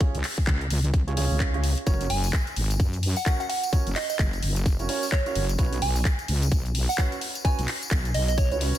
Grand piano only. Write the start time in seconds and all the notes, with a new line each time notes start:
0.01 C#4 F4 G#4 C#5
1.07 C#4 F4 G#4 C#5
1.17 C#4 F4 G#4 C#5
1.54 C#4 F4 G#4 C#5
1.87 C#4 F#4 A#4 C#5
3.26 C#4 F#4 A#4 C#5
3.73 C#4 F#4 A#4 C#5
4.80 C#4 F#4 A#4 C#5
4.89 C#4 F#4 A#4 C#5
5.26 C#4 F#4 A#4 C#5
5.59 C#4 F#4 B4 C#5
6.98 C#4 F#4 B4 C#5
7.45 C#4 F#4 B4 C#5
8.52 C#4 F#4 B4 C#5
8.61 C#4 F#4 B4 C#5